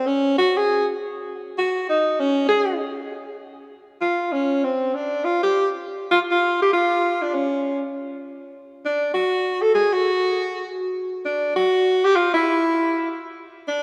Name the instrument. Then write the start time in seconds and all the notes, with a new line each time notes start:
alto saxophone
0.07 C#4
0.38 F#4
0.57 G#4
1.58 F#4
1.89 D#4
2.20 C#4
2.49 G#4
4.01 F4
4.32 C#4
4.64 C4
4.95 D4
5.25 F4
5.43 G4
6.11 F4
6.31 F4
6.62 G4
6.73 F4
7.22 D4
7.34 C#4
8.85 D4
9.14 F#4
9.62 A4
9.75 G#4
9.93 F#4
11.25 D4
11.56 F#4
12.05 G4
12.16 F4
12.34 E4
13.68 D4